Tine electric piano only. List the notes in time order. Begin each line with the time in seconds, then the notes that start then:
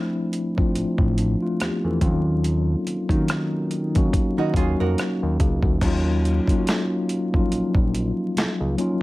Already playing: F3 A3 C4 D4 E4
0.56 F3 A3 C4 D4 F4
1.18 F3 D4
1.42 A3 F4
1.61 B3 G4
1.85 C4 A4
2.02 F3 A#3 C#4 D#4 F4
2.08 F#3
3.10 F#3 A#3 C#4 D#4 F#4
3.94 F#3 A#3 C#4 D#4 F#4
4.55 F#3 A#3 C#4 D#4 F#4
5.82 F#3 A#3 C#4 D#4 F4
6.48 F#3 A#3 C#4 D#4 F4
6.58 F#4
7.32 F3 A#3 C#4 D#4 F4
7.39 F#3
8.77 F#3 A#3 C#4 D#4 F4